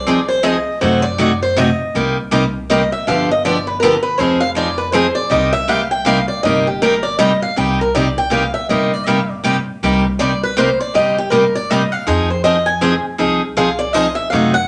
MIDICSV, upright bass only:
0, 0, Header, 1, 2, 480
1, 0, Start_track
1, 0, Key_signature, -3, "minor"
1, 0, Tempo, 374766
1, 1054, Time_signature, 3, 2, 24, 8
1, 18800, End_track
2, 0, Start_track
2, 0, Title_t, "Upright bass"
2, 0, Program_c, 0, 32
2, 0, Note_on_c, 0, 36, 77
2, 760, Note_off_c, 0, 36, 0
2, 1052, Note_on_c, 0, 42, 84
2, 2206, Note_off_c, 0, 42, 0
2, 2493, Note_on_c, 0, 36, 83
2, 3647, Note_off_c, 0, 36, 0
2, 3938, Note_on_c, 0, 31, 89
2, 5090, Note_off_c, 0, 31, 0
2, 5366, Note_on_c, 0, 29, 89
2, 6523, Note_off_c, 0, 29, 0
2, 6810, Note_on_c, 0, 36, 91
2, 7966, Note_off_c, 0, 36, 0
2, 8252, Note_on_c, 0, 31, 79
2, 9407, Note_off_c, 0, 31, 0
2, 9702, Note_on_c, 0, 36, 84
2, 10854, Note_off_c, 0, 36, 0
2, 11131, Note_on_c, 0, 31, 67
2, 12288, Note_off_c, 0, 31, 0
2, 12588, Note_on_c, 0, 36, 87
2, 13737, Note_off_c, 0, 36, 0
2, 14027, Note_on_c, 0, 31, 71
2, 15176, Note_off_c, 0, 31, 0
2, 15469, Note_on_c, 0, 41, 77
2, 16617, Note_off_c, 0, 41, 0
2, 16909, Note_on_c, 0, 36, 78
2, 18056, Note_off_c, 0, 36, 0
2, 18344, Note_on_c, 0, 42, 76
2, 18800, Note_off_c, 0, 42, 0
2, 18800, End_track
0, 0, End_of_file